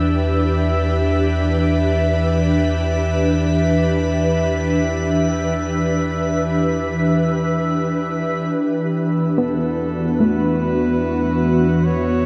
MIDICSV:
0, 0, Header, 1, 6, 480
1, 0, Start_track
1, 0, Key_signature, 1, "minor"
1, 0, Tempo, 500000
1, 11768, End_track
2, 0, Start_track
2, 0, Title_t, "Synth texture"
2, 0, Program_c, 0, 99
2, 0, Note_on_c, 0, 76, 67
2, 8219, Note_off_c, 0, 76, 0
2, 8230, Note_on_c, 0, 76, 72
2, 11768, Note_off_c, 0, 76, 0
2, 11768, End_track
3, 0, Start_track
3, 0, Title_t, "Flugelhorn"
3, 0, Program_c, 1, 56
3, 8609, Note_on_c, 1, 71, 70
3, 9003, Note_on_c, 1, 69, 83
3, 9018, Note_off_c, 1, 71, 0
3, 9786, Note_on_c, 1, 71, 104
3, 9800, Note_off_c, 1, 69, 0
3, 11371, Note_on_c, 1, 73, 110
3, 11386, Note_off_c, 1, 71, 0
3, 11768, Note_off_c, 1, 73, 0
3, 11768, End_track
4, 0, Start_track
4, 0, Title_t, "Ambient pad"
4, 0, Program_c, 2, 92
4, 0, Note_on_c, 2, 52, 66
4, 0, Note_on_c, 2, 62, 73
4, 0, Note_on_c, 2, 67, 58
4, 0, Note_on_c, 2, 71, 72
4, 8202, Note_off_c, 2, 67, 0
4, 8472, Note_on_c, 2, 59, 72
4, 8861, Note_on_c, 2, 66, 75
4, 10722, Note_off_c, 2, 62, 0
4, 11768, Note_off_c, 2, 52, 0
4, 11768, Note_off_c, 2, 59, 0
4, 11768, Note_off_c, 2, 66, 0
4, 11768, Note_off_c, 2, 71, 0
4, 11768, End_track
5, 0, Start_track
5, 0, Title_t, "Synth pluck"
5, 0, Program_c, 3, 84
5, 9003, Note_on_c, 3, 59, 47
5, 9750, Note_off_c, 3, 59, 0
5, 9794, Note_on_c, 3, 57, 41
5, 11768, Note_off_c, 3, 57, 0
5, 11768, End_track
6, 0, Start_track
6, 0, Title_t, "Sub bass"
6, 0, Program_c, 4, 38
6, 0, Note_on_c, 4, 40, 70
6, 8168, Note_off_c, 4, 40, 0
6, 8213, Note_on_c, 4, 40, 78
6, 11768, Note_off_c, 4, 40, 0
6, 11768, End_track
0, 0, End_of_file